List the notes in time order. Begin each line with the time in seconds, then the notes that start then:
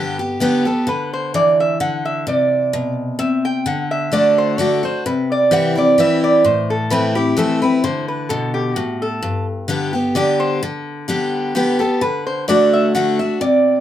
Already playing: G2 D3 G3 B3 G4
0.19 B3 G4
0.40 D3 G3 B3 G4
0.65 B3 G4 A4
0.87 D3 B4
1.13 C5
1.34 E3 D5
1.60 E5
1.80 D3 F#5
2.05 E5
2.27 C3 D5
2.73 B2
3.19 C3 E5
3.45 G5
3.66 D3 F#5
3.91 E5
4.12 D3 A3 D4 F#4 D5
4.38 C5
4.58 D3 A3 D4 F#4 D5
4.83 D4 F#4 C5
5.06 C3 B4
5.32 D5
5.51 E3 G3 C4 E4 F#5
5.75 C4 E4 D5
5.98 E3 G3 C4 E4 E5
6.24 D5
6.44 A2 C5
6.70 A4
6.90 E3 A3 C4 E4 B4
7.15 C4 E4 G4
7.37 E3 A3 C4 E4 A4
7.62 C4 E4 B4
7.84 D3 C5
8.08 B4
8.29 B2 A4
8.54 G4
8.76 A2 F#4
9.02 A4
9.22 G2
9.68 D3 G3 B3 G4
9.93 B3 G4
10.15 D3 G3 B3 G4 D5
10.40 C5
10.63 D3
11.08 D3 G3 B3 G4
11.55 D3 G3 B3 G4
11.79 B3 G4 A4
12.01 D3 B4
12.27 C5
12.48 D3 A3 D4 F#4 D5
12.73 E5
12.95 D3 A3 D4 F#4 F#5
13.19 D4 F#4 E5
13.41 C3 D5